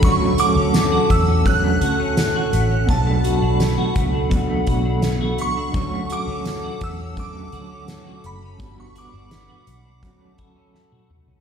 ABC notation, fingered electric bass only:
X:1
M:4/4
L:1/16
Q:1/4=84
K:D
V:1 name="Fingered electric bass" clef=bass
D,,3 D,,2 z E,,4 D,,4 A,,,2 | B,,,3 B,,,2 z C,,4 B,,,4 C,,2 | D,,3 D,,2 z E,,4 D,,4 F,,,2 | G,,,3 G,,,2 z B,,,2 D,,2 D,,4 C,,2 |]